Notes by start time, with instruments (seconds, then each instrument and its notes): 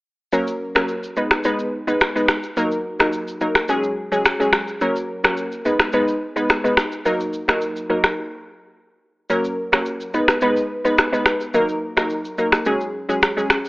0.33 synth pluck F#3 A#3 C#4 A#4, shaker
0.47 shaker
0.75 synth pluck F#3 A#3 C#4 A#4, finger snap, cross-stick, shaker
0.88 shaker
1.03 shaker
1.17 synth pluck G#3 B3 D#4 B4, shaker
1.31 finger snap, cross-stick, shaker
1.44 synth pluck G#3 B3 D#4 B4, shaker
1.59 shaker
1.87 synth pluck G#3 B3 D#4 B4, shaker
2.01 finger snap, cross-stick, shaker
2.15 synth pluck G#3 B3 D#4 B4, shaker
2.28 finger snap, cross-stick, shaker
2.43 shaker
2.57 synth pluck F#3 A#3 D#4 A#4, shaker
2.72 shaker
2.99 synth pluck F#3 A#3 D#4 A#4, finger snap, cross-stick, shaker
3.13 shaker
3.28 shaker
3.41 synth pluck F#3 A#3 D#4 A#4, shaker
3.55 finger snap, cross-stick, shaker
3.68 synth pluck F#3 G#3 C#4 G#4, shaker
3.84 shaker
4.12 synth pluck F#3 G#3 C#4 G#4, shaker
4.25 finger snap, cross-stick, shaker
4.40 synth pluck F#3 G#3 C#4 G#4, shaker
4.53 finger snap, cross-stick, shaker
4.68 shaker
4.81 synth pluck F#3 A#3 C#4 A#4, shaker
4.96 shaker
5.24 synth pluck F#3 A#3 C#4 A#4, finger snap, cross-stick, shaker
5.37 shaker
5.52 shaker
5.65 synth pluck G#3 B3 D#4 B4, shaker
5.79 finger snap, cross-stick, shaker
5.93 synth pluck G#3 B3 D#4 B4, shaker
6.08 shaker
6.36 synth pluck G#3 B3 D#4 B4, shaker
6.50 finger snap, cross-stick, shaker
6.64 synth pluck G#3 B3 D#4 B4, shaker
6.77 finger snap, cross-stick, shaker
6.92 shaker
7.05 synth pluck F#3 A#3 D#4 A#4, shaker
7.20 shaker
7.33 shaker
7.48 synth pluck F#3 A#3 D#4 A#4, finger snap, cross-stick, shaker
7.61 shaker
7.76 shaker
7.90 synth pluck F#3 A#3 D#4 A#4
8.04 finger snap, cross-stick, shaker
9.30 synth pluck F#3 A#3 C#4 A#4, shaker
9.45 shaker
9.72 synth pluck F#3 A#3 C#4 A#4, finger snap, cross-stick, shaker
9.86 shaker
10.01 shaker
10.14 synth pluck G#3 B3 D#4 B4, shaker
10.28 finger snap, cross-stick, shaker
10.41 synth pluck G#3 B3 D#4 B4, shaker
10.56 shaker
10.84 synth pluck G#3 B3 D#4 B4, shaker
10.98 finger snap, cross-stick, shaker
11.12 synth pluck G#3 B3 D#4 B4, shaker
11.26 finger snap, cross-stick, shaker
11.40 shaker
11.54 synth pluck F#3 A#3 D#4 A#4, shaker
11.69 shaker
11.97 synth pluck F#3 A#3 D#4 A#4, finger snap, cross-stick, shaker
12.10 shaker
12.25 shaker
12.38 synth pluck F#3 A#3 D#4 A#4, shaker
12.52 finger snap, cross-stick, shaker
12.65 synth pluck F#3 G#3 C#4 G#4, shaker
12.81 shaker
13.09 synth pluck F#3 G#3 C#4 G#4, shaker
13.22 finger snap, cross-stick, shaker
13.37 synth pluck F#3 G#3 C#4 G#4, shaker
13.50 finger snap, cross-stick, shaker
13.65 shaker